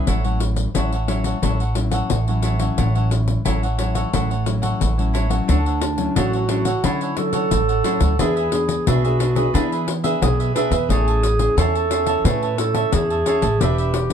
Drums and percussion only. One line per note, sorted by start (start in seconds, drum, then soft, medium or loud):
0.07 pandeiro medium
0.25 pandeiro soft
0.40 pandeiro medium
0.56 pandeiro medium
0.75 pandeiro medium
0.92 pandeiro soft
1.08 pandeiro medium
1.24 pandeiro soft
1.43 pandeiro medium
1.60 pandeiro soft
1.75 pandeiro medium
1.91 pandeiro medium
2.10 pandeiro medium
2.28 pandeiro soft
2.43 pandeiro medium
2.59 pandeiro medium
2.78 pandeiro medium
2.95 pandeiro soft
3.11 pandeiro medium
3.28 pandeiro medium
3.46 pandeiro medium
3.63 pandeiro soft
3.79 pandeiro medium
3.95 pandeiro medium
4.13 pandeiro medium
4.31 pandeiro soft
4.46 pandeiro medium
4.63 pandeiro medium
4.81 pandeiro medium
4.99 pandeiro soft
5.15 pandeiro medium
5.31 pandeiro medium
5.49 pandeiro medium
5.66 pandeiro soft
5.81 pandeiro medium
5.98 pandeiro medium
6.16 pandeiro medium
6.33 pandeiro soft
6.49 pandeiro medium
6.65 pandeiro medium
6.84 pandeiro medium
7.01 pandeiro soft
7.17 pandeiro medium
7.33 pandeiro medium
7.51 pandeiro medium
7.69 pandeiro soft
7.84 pandeiro medium
8.00 pandeiro medium
8.19 pandeiro medium
8.37 pandeiro soft
8.52 pandeiro medium
8.69 pandeiro medium
8.87 pandeiro medium
9.05 pandeiro soft
9.20 pandeiro medium
9.36 pandeiro medium
9.55 pandeiro medium
9.72 pandeiro soft
9.88 pandeiro medium
10.04 pandeiro medium
10.22 pandeiro medium
10.40 pandeiro soft
10.56 pandeiro medium
10.72 pandeiro medium
10.90 pandeiro medium
11.08 pandeiro soft
11.23 pandeiro medium
11.39 pandeiro medium
11.58 pandeiro medium
11.75 pandeiro soft
11.91 pandeiro medium
12.07 pandeiro medium
12.25 pandeiro medium
12.43 pandeiro soft
12.58 pandeiro medium
12.75 pandeiro medium
12.92 pandeiro medium
13.10 pandeiro soft
13.26 pandeiro medium
13.42 pandeiro medium
13.61 pandeiro medium
13.78 pandeiro soft
13.94 pandeiro medium